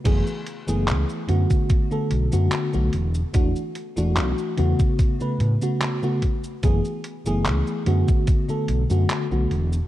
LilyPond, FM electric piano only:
\new Staff \with { instrumentName = "FM electric piano" } { \time 4/4 \key fis \minor \tempo 4 = 73 <e a b gis'>16 r8 <e a b gis'>8. <d a b fis'>8. <d a b a'>8 <d a b fis'>8 <d a b fis'>16 r8 | <e a d' fis'>16 r8 <e a d' fis'>8. <cis a b fis'>8. <cis a b b'>8 <cis a b fis'>8 <cis a b fis'>16 r8 | <e a b gis'>16 r8 <e a b gis'>8. <d a b fis'>8. <d a b a'>8 <d a b fis'>8 <d a b fis'>16 r8 | }